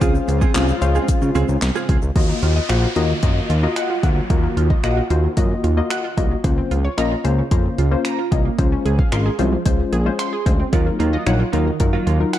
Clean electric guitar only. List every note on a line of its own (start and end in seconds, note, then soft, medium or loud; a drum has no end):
0.01 0.14 C4 medium
0.01 0.14 F4 medium
0.01 0.13 G#4 loud
0.15 muted clean electric guitar stroke medium
0.28 muted clean electric guitar stroke soft
0.41 0.52 C4 medium
0.41 0.52 F4 medium
0.41 0.52 G#4 medium
0.55 0.68 C4 medium
0.55 0.68 F4 medium
0.55 0.67 G#4 loud
0.68 muted clean electric guitar stroke soft
0.82 muted clean electric guitar stroke soft
0.95 1.06 C4 medium
0.95 1.06 F4 medium
0.95 1.05 G#4 medium
1.08 muted clean electric guitar stroke soft
1.22 muted clean electric guitar stroke medium
1.35 1.48 C4 loud
1.35 1.48 F4 loud
1.35 1.47 G#4 loud
1.49 muted clean electric guitar stroke soft
1.62 muted clean electric guitar stroke soft
1.75 1.87 C4 medium
1.75 1.88 F4 medium
1.75 1.88 G#4 medium
1.89 1.99 C4 medium
1.89 1.99 F4 medium
1.89 2.00 G#4 medium
2.02 muted clean electric guitar stroke soft
10.73 10.86 F#3 medium
10.73 10.86 A#3 medium
10.73 10.86 F4 medium
10.99 11.10 F#3 medium
10.99 11.10 A#3 medium
10.99 11.10 F4 medium
11.13 11.24 F#3 medium
11.13 11.23 A#3 medium
11.13 11.23 F4 medium
11.40 muted clean electric guitar stroke soft
11.53 11.66 F#3 medium
11.53 11.66 A#3 medium
11.53 11.65 F4 medium
11.80 muted clean electric guitar stroke soft
11.93 12.05 F#3 medium
11.93 12.06 A#3 medium
11.93 12.06 F4 medium
12.07 12.17 F#3 medium
12.07 12.17 A#3 medium
12.07 12.17 F4 medium
12.34 muted clean electric guitar stroke soft